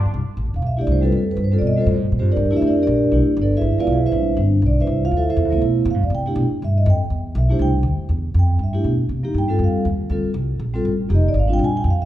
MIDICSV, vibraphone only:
0, 0, Header, 1, 2, 480
1, 0, Start_track
1, 0, Key_signature, 0, "major"
1, 0, Tempo, 248963
1, 276, Time_signature, 4, 2, 24, 8
1, 23234, End_track
2, 0, Start_track
2, 0, Title_t, "Vibraphone"
2, 0, Program_c, 0, 11
2, 1080, Note_on_c, 0, 77, 81
2, 1253, Note_off_c, 0, 77, 0
2, 1283, Note_on_c, 0, 76, 80
2, 1487, Note_on_c, 0, 64, 70
2, 1502, Note_on_c, 0, 57, 65
2, 1514, Note_on_c, 0, 62, 64
2, 1521, Note_on_c, 0, 67, 81
2, 1535, Note_off_c, 0, 76, 0
2, 1566, Note_on_c, 0, 74, 78
2, 1736, Note_off_c, 0, 74, 0
2, 1772, Note_on_c, 0, 72, 79
2, 1952, Note_on_c, 0, 55, 81
2, 1956, Note_off_c, 0, 64, 0
2, 1964, Note_off_c, 0, 57, 0
2, 1970, Note_off_c, 0, 62, 0
2, 1972, Note_on_c, 0, 60, 70
2, 1973, Note_off_c, 0, 67, 0
2, 1976, Note_on_c, 0, 65, 70
2, 1983, Note_on_c, 0, 69, 82
2, 2020, Note_off_c, 0, 72, 0
2, 2027, Note_on_c, 0, 71, 80
2, 2155, Note_off_c, 0, 55, 0
2, 2165, Note_off_c, 0, 60, 0
2, 2167, Note_off_c, 0, 65, 0
2, 2171, Note_off_c, 0, 69, 0
2, 2207, Note_off_c, 0, 71, 0
2, 2255, Note_on_c, 0, 69, 70
2, 2502, Note_off_c, 0, 69, 0
2, 2530, Note_on_c, 0, 71, 85
2, 2699, Note_off_c, 0, 71, 0
2, 2782, Note_on_c, 0, 72, 78
2, 2918, Note_on_c, 0, 55, 77
2, 2929, Note_on_c, 0, 60, 68
2, 2947, Note_on_c, 0, 65, 68
2, 2957, Note_on_c, 0, 69, 83
2, 3007, Note_off_c, 0, 72, 0
2, 3055, Note_on_c, 0, 74, 84
2, 3119, Note_off_c, 0, 55, 0
2, 3124, Note_off_c, 0, 60, 0
2, 3134, Note_off_c, 0, 65, 0
2, 3138, Note_off_c, 0, 69, 0
2, 3203, Note_off_c, 0, 74, 0
2, 3220, Note_on_c, 0, 75, 93
2, 3398, Note_on_c, 0, 55, 77
2, 3417, Note_on_c, 0, 60, 67
2, 3429, Note_on_c, 0, 65, 70
2, 3436, Note_on_c, 0, 69, 85
2, 3465, Note_off_c, 0, 75, 0
2, 3488, Note_on_c, 0, 72, 89
2, 3594, Note_off_c, 0, 72, 0
2, 3599, Note_off_c, 0, 55, 0
2, 3609, Note_off_c, 0, 60, 0
2, 3615, Note_off_c, 0, 65, 0
2, 3618, Note_off_c, 0, 69, 0
2, 4226, Note_on_c, 0, 72, 76
2, 4234, Note_on_c, 0, 60, 62
2, 4236, Note_on_c, 0, 65, 63
2, 4238, Note_on_c, 0, 67, 63
2, 4449, Note_off_c, 0, 67, 0
2, 4449, Note_off_c, 0, 72, 0
2, 4454, Note_off_c, 0, 60, 0
2, 4454, Note_off_c, 0, 65, 0
2, 4467, Note_on_c, 0, 74, 91
2, 4472, Note_on_c, 0, 67, 73
2, 4474, Note_on_c, 0, 70, 73
2, 4476, Note_on_c, 0, 62, 74
2, 4832, Note_on_c, 0, 64, 99
2, 4833, Note_off_c, 0, 62, 0
2, 4852, Note_on_c, 0, 57, 85
2, 4854, Note_off_c, 0, 67, 0
2, 4856, Note_on_c, 0, 62, 85
2, 4877, Note_on_c, 0, 67, 98
2, 4885, Note_off_c, 0, 74, 0
2, 4889, Note_off_c, 0, 70, 0
2, 4944, Note_off_c, 0, 64, 0
2, 4944, Note_on_c, 0, 64, 77
2, 4947, Note_on_c, 0, 76, 97
2, 5047, Note_off_c, 0, 57, 0
2, 5049, Note_off_c, 0, 62, 0
2, 5060, Note_off_c, 0, 67, 0
2, 5108, Note_off_c, 0, 64, 0
2, 5110, Note_off_c, 0, 76, 0
2, 5148, Note_on_c, 0, 62, 63
2, 5150, Note_on_c, 0, 74, 76
2, 5151, Note_on_c, 0, 70, 59
2, 5152, Note_on_c, 0, 67, 62
2, 5390, Note_off_c, 0, 62, 0
2, 5392, Note_off_c, 0, 67, 0
2, 5392, Note_off_c, 0, 70, 0
2, 5392, Note_off_c, 0, 74, 0
2, 5447, Note_on_c, 0, 67, 72
2, 5448, Note_on_c, 0, 70, 69
2, 5458, Note_on_c, 0, 74, 89
2, 5461, Note_on_c, 0, 62, 71
2, 6012, Note_on_c, 0, 64, 69
2, 6016, Note_off_c, 0, 62, 0
2, 6017, Note_on_c, 0, 57, 63
2, 6020, Note_off_c, 0, 67, 0
2, 6039, Note_on_c, 0, 62, 65
2, 6041, Note_off_c, 0, 70, 0
2, 6043, Note_on_c, 0, 67, 75
2, 6046, Note_off_c, 0, 74, 0
2, 6282, Note_off_c, 0, 64, 0
2, 6285, Note_off_c, 0, 57, 0
2, 6295, Note_off_c, 0, 62, 0
2, 6297, Note_off_c, 0, 67, 0
2, 6585, Note_on_c, 0, 74, 75
2, 6595, Note_on_c, 0, 62, 61
2, 6603, Note_on_c, 0, 69, 66
2, 6603, Note_on_c, 0, 71, 62
2, 6830, Note_off_c, 0, 74, 0
2, 6835, Note_off_c, 0, 62, 0
2, 6839, Note_off_c, 0, 69, 0
2, 6839, Note_off_c, 0, 71, 0
2, 6882, Note_on_c, 0, 71, 71
2, 6884, Note_on_c, 0, 64, 72
2, 6887, Note_on_c, 0, 76, 92
2, 6889, Note_on_c, 0, 68, 71
2, 7291, Note_on_c, 0, 53, 82
2, 7291, Note_on_c, 0, 56, 67
2, 7294, Note_off_c, 0, 71, 0
2, 7295, Note_off_c, 0, 64, 0
2, 7296, Note_off_c, 0, 76, 0
2, 7297, Note_off_c, 0, 68, 0
2, 7321, Note_on_c, 0, 59, 69
2, 7321, Note_on_c, 0, 64, 88
2, 7329, Note_on_c, 0, 65, 84
2, 7329, Note_on_c, 0, 74, 81
2, 7331, Note_on_c, 0, 71, 84
2, 7336, Note_on_c, 0, 77, 98
2, 7468, Note_off_c, 0, 53, 0
2, 7468, Note_off_c, 0, 56, 0
2, 7482, Note_off_c, 0, 59, 0
2, 7483, Note_off_c, 0, 64, 0
2, 7501, Note_off_c, 0, 65, 0
2, 7501, Note_off_c, 0, 74, 0
2, 7502, Note_off_c, 0, 71, 0
2, 7505, Note_off_c, 0, 77, 0
2, 7564, Note_on_c, 0, 64, 59
2, 7569, Note_on_c, 0, 76, 79
2, 7574, Note_on_c, 0, 68, 58
2, 7578, Note_on_c, 0, 71, 60
2, 7799, Note_off_c, 0, 64, 0
2, 7802, Note_off_c, 0, 76, 0
2, 7804, Note_off_c, 0, 68, 0
2, 7806, Note_off_c, 0, 71, 0
2, 7828, Note_on_c, 0, 64, 74
2, 7835, Note_on_c, 0, 76, 91
2, 7840, Note_on_c, 0, 72, 72
2, 7855, Note_on_c, 0, 71, 68
2, 7948, Note_on_c, 0, 62, 59
2, 7954, Note_on_c, 0, 55, 52
2, 7956, Note_off_c, 0, 64, 0
2, 7966, Note_on_c, 0, 60, 54
2, 7980, Note_on_c, 0, 64, 65
2, 8210, Note_off_c, 0, 62, 0
2, 8213, Note_off_c, 0, 55, 0
2, 8219, Note_off_c, 0, 60, 0
2, 8226, Note_off_c, 0, 64, 0
2, 8418, Note_on_c, 0, 62, 72
2, 8432, Note_on_c, 0, 55, 61
2, 8434, Note_off_c, 0, 76, 0
2, 8437, Note_off_c, 0, 72, 0
2, 8442, Note_on_c, 0, 60, 66
2, 8444, Note_off_c, 0, 62, 0
2, 8444, Note_on_c, 0, 62, 73
2, 8445, Note_off_c, 0, 71, 0
2, 8692, Note_off_c, 0, 55, 0
2, 8697, Note_off_c, 0, 60, 0
2, 8698, Note_off_c, 0, 62, 0
2, 8994, Note_on_c, 0, 74, 79
2, 9018, Note_on_c, 0, 62, 62
2, 9234, Note_off_c, 0, 74, 0
2, 9246, Note_off_c, 0, 62, 0
2, 9265, Note_on_c, 0, 76, 89
2, 9278, Note_on_c, 0, 71, 68
2, 9288, Note_on_c, 0, 72, 71
2, 9292, Note_on_c, 0, 64, 68
2, 9684, Note_off_c, 0, 76, 0
2, 9691, Note_off_c, 0, 71, 0
2, 9696, Note_off_c, 0, 72, 0
2, 9699, Note_off_c, 0, 64, 0
2, 9736, Note_on_c, 0, 77, 98
2, 9751, Note_on_c, 0, 65, 80
2, 9904, Note_off_c, 0, 77, 0
2, 9912, Note_off_c, 0, 65, 0
2, 9967, Note_on_c, 0, 69, 71
2, 9967, Note_on_c, 0, 72, 66
2, 9974, Note_on_c, 0, 64, 68
2, 9979, Note_on_c, 0, 76, 81
2, 10186, Note_off_c, 0, 64, 0
2, 10186, Note_off_c, 0, 69, 0
2, 10197, Note_off_c, 0, 76, 0
2, 10200, Note_off_c, 0, 72, 0
2, 10209, Note_on_c, 0, 69, 73
2, 10210, Note_on_c, 0, 64, 76
2, 10221, Note_on_c, 0, 76, 97
2, 10227, Note_on_c, 0, 72, 71
2, 10613, Note_on_c, 0, 53, 85
2, 10629, Note_on_c, 0, 57, 80
2, 10631, Note_off_c, 0, 64, 0
2, 10641, Note_on_c, 0, 59, 79
2, 10654, Note_on_c, 0, 64, 92
2, 10820, Note_off_c, 0, 69, 0
2, 10826, Note_off_c, 0, 76, 0
2, 10829, Note_off_c, 0, 72, 0
2, 11267, Note_off_c, 0, 53, 0
2, 11276, Note_off_c, 0, 57, 0
2, 11281, Note_off_c, 0, 59, 0
2, 11288, Note_off_c, 0, 64, 0
2, 11385, Note_on_c, 0, 77, 78
2, 11628, Note_off_c, 0, 77, 0
2, 11638, Note_on_c, 0, 74, 69
2, 11814, Note_off_c, 0, 74, 0
2, 11851, Note_on_c, 0, 79, 100
2, 12072, Note_on_c, 0, 57, 65
2, 12072, Note_on_c, 0, 64, 77
2, 12091, Note_on_c, 0, 62, 68
2, 12098, Note_on_c, 0, 67, 79
2, 12100, Note_off_c, 0, 79, 0
2, 12256, Note_off_c, 0, 57, 0
2, 12256, Note_off_c, 0, 64, 0
2, 12266, Note_off_c, 0, 62, 0
2, 12270, Note_off_c, 0, 67, 0
2, 12808, Note_on_c, 0, 76, 88
2, 13059, Note_off_c, 0, 76, 0
2, 13064, Note_on_c, 0, 75, 89
2, 13246, Note_off_c, 0, 75, 0
2, 13303, Note_on_c, 0, 79, 96
2, 13546, Note_off_c, 0, 79, 0
2, 14230, Note_on_c, 0, 76, 79
2, 14444, Note_on_c, 0, 64, 82
2, 14457, Note_on_c, 0, 57, 73
2, 14473, Note_on_c, 0, 62, 73
2, 14486, Note_on_c, 0, 67, 91
2, 14489, Note_off_c, 0, 76, 0
2, 14501, Note_on_c, 0, 72, 72
2, 14641, Note_off_c, 0, 64, 0
2, 14647, Note_off_c, 0, 57, 0
2, 14655, Note_off_c, 0, 62, 0
2, 14662, Note_off_c, 0, 67, 0
2, 14684, Note_off_c, 0, 72, 0
2, 14688, Note_on_c, 0, 79, 100
2, 14854, Note_off_c, 0, 79, 0
2, 16175, Note_on_c, 0, 79, 89
2, 16595, Note_off_c, 0, 79, 0
2, 16649, Note_on_c, 0, 76, 64
2, 16838, Note_on_c, 0, 57, 69
2, 16838, Note_on_c, 0, 64, 78
2, 16860, Note_on_c, 0, 62, 69
2, 16865, Note_on_c, 0, 67, 84
2, 17037, Note_off_c, 0, 57, 0
2, 17037, Note_off_c, 0, 64, 0
2, 17048, Note_off_c, 0, 62, 0
2, 17050, Note_off_c, 0, 67, 0
2, 17072, Note_off_c, 0, 76, 0
2, 17802, Note_on_c, 0, 53, 75
2, 17806, Note_on_c, 0, 58, 69
2, 17822, Note_on_c, 0, 63, 70
2, 17831, Note_on_c, 0, 67, 82
2, 17999, Note_off_c, 0, 53, 0
2, 18001, Note_off_c, 0, 58, 0
2, 18009, Note_off_c, 0, 63, 0
2, 18013, Note_off_c, 0, 67, 0
2, 18092, Note_on_c, 0, 79, 103
2, 18278, Note_on_c, 0, 55, 76
2, 18290, Note_on_c, 0, 60, 74
2, 18306, Note_on_c, 0, 65, 70
2, 18319, Note_on_c, 0, 69, 90
2, 18513, Note_off_c, 0, 79, 0
2, 18587, Note_on_c, 0, 77, 78
2, 18937, Note_off_c, 0, 55, 0
2, 18943, Note_off_c, 0, 60, 0
2, 18951, Note_off_c, 0, 65, 0
2, 18957, Note_off_c, 0, 69, 0
2, 19001, Note_off_c, 0, 77, 0
2, 19472, Note_on_c, 0, 55, 70
2, 19489, Note_on_c, 0, 60, 65
2, 19496, Note_on_c, 0, 65, 63
2, 19514, Note_on_c, 0, 69, 74
2, 19728, Note_off_c, 0, 55, 0
2, 19736, Note_off_c, 0, 60, 0
2, 19740, Note_off_c, 0, 65, 0
2, 19749, Note_off_c, 0, 69, 0
2, 20700, Note_on_c, 0, 55, 86
2, 20706, Note_on_c, 0, 60, 81
2, 20723, Note_on_c, 0, 65, 80
2, 20742, Note_on_c, 0, 69, 93
2, 20887, Note_off_c, 0, 55, 0
2, 20890, Note_off_c, 0, 60, 0
2, 20899, Note_off_c, 0, 65, 0
2, 20908, Note_off_c, 0, 69, 0
2, 21378, Note_on_c, 0, 53, 65
2, 21388, Note_on_c, 0, 58, 66
2, 21406, Note_on_c, 0, 63, 59
2, 21413, Note_on_c, 0, 67, 76
2, 21499, Note_on_c, 0, 75, 87
2, 21640, Note_off_c, 0, 53, 0
2, 21645, Note_off_c, 0, 58, 0
2, 21654, Note_off_c, 0, 63, 0
2, 21658, Note_off_c, 0, 67, 0
2, 21722, Note_off_c, 0, 75, 0
2, 21755, Note_on_c, 0, 74, 93
2, 21909, Note_off_c, 0, 74, 0
2, 21968, Note_on_c, 0, 77, 89
2, 22128, Note_on_c, 0, 62, 79
2, 22140, Note_on_c, 0, 55, 73
2, 22144, Note_on_c, 0, 60, 76
2, 22166, Note_on_c, 0, 65, 91
2, 22195, Note_off_c, 0, 77, 0
2, 22238, Note_on_c, 0, 79, 98
2, 22320, Note_off_c, 0, 62, 0
2, 22326, Note_off_c, 0, 55, 0
2, 22328, Note_off_c, 0, 60, 0
2, 22339, Note_off_c, 0, 65, 0
2, 22391, Note_off_c, 0, 79, 0
2, 22448, Note_on_c, 0, 80, 108
2, 22676, Note_off_c, 0, 80, 0
2, 22694, Note_on_c, 0, 79, 93
2, 22858, Note_off_c, 0, 79, 0
2, 22952, Note_on_c, 0, 77, 87
2, 23167, Note_off_c, 0, 77, 0
2, 23174, Note_on_c, 0, 76, 87
2, 23234, Note_off_c, 0, 76, 0
2, 23234, End_track
0, 0, End_of_file